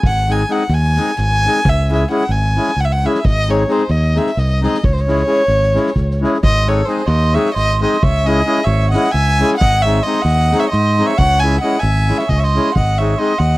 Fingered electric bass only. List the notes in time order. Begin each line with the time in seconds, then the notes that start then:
0.05 G#1
0.69 D#2
1.18 G#1
1.66 C#2
2.29 G#1
2.76 C#2
3.25 G#1
3.89 D#2
4.37 C2
4.83 C#2
5.48 G#1
5.96 C#2
6.43 G#1
7.08 D#2
7.56 G#1
8.03 C#2
8.67 G#1
9.14 C#2
9.61 G#1
10.25 D#2
10.73 G#2
11.20 C#2
11.83 G#1
12.30 C#2
12.76 G#1
13.40 D#2